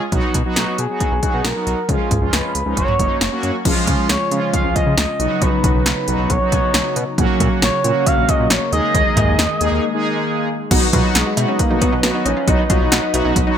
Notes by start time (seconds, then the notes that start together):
0.12 B1 F#3 B3 D#4 F#4, kick, closed hi-hat
0.34 B2, kick, closed hi-hat
0.45 F#3 B3 D#4 F#4
0.56 B1, snare, closed hi-hat
0.78 B2 G#4, closed hi-hat
0.89 F#3 B3 D#4 F#4
1.00 kick, closed hi-hat
1.12 B1
1.23 F#3 B3 D#4 F#4, kick, closed hi-hat
1.34 B2
1.44 B1 A#4, snare, closed hi-hat
1.56 F#3 B3 D#4 F#4
1.67 B1, closed hi-hat
1.89 C#2 F3 G#3 C#4 F4 G#4, kick, closed hi-hat
2.11 C#2, kick, closed hi-hat, mid tom
2.22 C#2 F3 G#3 C#4 F4
2.33 C#2 B4, snare, closed hi-hat
2.55 C#2, closed hi-hat
2.66 C#2 F3 G#3 C#4 D#4
2.77 F#1 F#3 A#3 C#4 F#4 C#5, kick, closed hi-hat
2.88 mid tom
2.99 F#1 F#3 A#3 C#4 D#4, kick, closed hi-hat
3.21 F#1, snare, closed hi-hat
3.32 F#3 A#3 C#4 F#4
3.43 F#2, closed hi-hat
3.65 C#2 C#3 F3 G#3 C#4 F4, kick, closed hi-hat, crash
3.87 C#3, kick, closed hi-hat
4.09 C#2 C#5, snare, closed hi-hat
4.31 C#3 F3 G#3 C#4 F4, closed hi-hat
4.54 F5, kick, closed hi-hat
4.65 C#2
4.76 D#5, kick, closed hi-hat
4.87 C#3
4.98 C#2 D#5, snare, closed hi-hat
5.20 B1 F#3 B3 D#4 F#4, closed hi-hat
5.42 B1 B4, kick, closed hi-hat
5.64 B1, kick, closed hi-hat
5.75 B1
5.86 B1 B4, snare, closed hi-hat
6.08 B1 F#3 B3 D#4 F#4, closed hi-hat
6.19 B1
6.30 B1 C#5, kick, closed hi-hat
6.41 F#3 B3 D#4 F#4
6.52 B1 C#5, kick, closed hi-hat
6.74 B1, snare, closed hi-hat
6.96 B2, closed hi-hat
7.18 A#1 C#3 F#3 A#3 C#4 F#4, kick, closed hi-hat
7.40 A#2, kick, closed hi-hat
7.62 A#1 C#5, snare, closed hi-hat
7.84 A#2 F#3 A#3 C#4 F#4, closed hi-hat
8.06 F5, kick, closed hi-hat
8.18 A#1
8.29 D#5, kick, closed hi-hat
8.39 A#2
8.50 A#1 C#5, snare, closed hi-hat
8.72 D#2 D#3 G#3 A#3 D#4 G#4 D#5, closed hi-hat
8.95 D#2, kick, closed hi-hat
9.17 D#2, kick, closed hi-hat, mid tom, cowbell
9.28 D#2
9.39 D#2, snare, closed hi-hat
9.61 D#2 G#3 A#3 D#4 G#4, closed hi-hat
9.72 D#2
9.94 G#3 A#3 D#4 G#4
10.71 B1 F#3 B3 D#4 F#4 B4 D#5, kick, closed hi-hat, crash
10.82 D#4
10.93 B2 F#3 B3 D#4 F4 F#4, kick, closed hi-hat
11.15 B1 G#3 F#4, snare, closed hi-hat
11.26 F#4
11.37 B2 F#3 B3 D#4 F#4, closed hi-hat, cowbell
11.48 C#4
11.59 A#3, kick, closed hi-hat
11.70 B1 F#3 B3 D#4 F#4
11.82 B3, kick, closed hi-hat
11.93 B2 D#4
12.03 B1 F#3 B3 D#4 F#4, snare, closed hi-hat
12.15 D#4
12.26 A#1 C#4 D#4, closed hi-hat
12.37 F4
12.48 B1 F#3 B3 D#4 F#4, kick, closed hi-hat
12.59 D#4
12.69 B1 F#3 B3 D#4 F4 F#4, kick, closed hi-hat
12.81 B1
12.92 B1 F#4, snare, closed hi-hat
13.03 F#4
13.14 B1 F#3 B3 D#4 F#4, closed hi-hat, cowbell
13.25 B1 C#4
13.36 B1, kick, closed hi-hat
13.47 F#3 B3 D#4 F#4